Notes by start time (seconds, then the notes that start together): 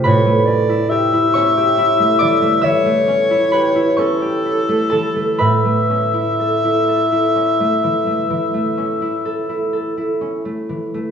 Already playing: A3 G4 G5
0.04 A2 B4 C#5 B5
0.26 A3
0.46 C#4 D5
0.69 E4
0.89 G4 E5
1.13 E4
1.34 C#4 C#5 C#6
1.57 G4
1.78 E4
2.00 A3
2.19 E3 D5 D6
2.42 A3
2.62 E3 C#5 E5 E6
2.85 A3
3.08 C#4
3.31 E4
3.52 G4 B4 B5
3.76 E4
3.97 C#4 A4 C#5 C#6
4.22 G4
4.46 E4
4.69 A3
4.90 E3 A4 A5
5.16 A3
5.38 A2 B4 E5 B5
5.65 A3
5.90 C#4
6.14 E4
6.40 A4
6.65 E4
6.88 A4
7.12 E4
7.36 C#4
7.60 A3
7.84 E3
8.07 A3
8.30 E3
8.54 A3
8.77 C#4
9.02 E4
9.25 A4
9.49 E4
9.73 A4
9.97 E4
10.21 C#4
10.45 A3
10.69 E3
10.94 A3